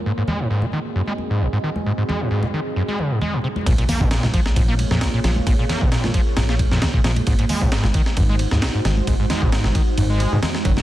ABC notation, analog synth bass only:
X:1
M:4/4
L:1/16
Q:"Swing 16ths" 1/4=133
K:Bbm
V:1 name="Analog synth bass" clef=bass
z16 | z16 | B,,, z2 B,,, z B,,, z2 B,,,3 F,, z2 B,,, z | B,,, z2 B,,, z B,,, z2 B,,,3 F,, z2 B,,, z |
A,,, z2 A,,, z A,,, z2 A,,,3 E,, z2 A,,, z | A,,, z2 A,,, z A,,, z2 A,,,3 A,, z2 G,,, z |]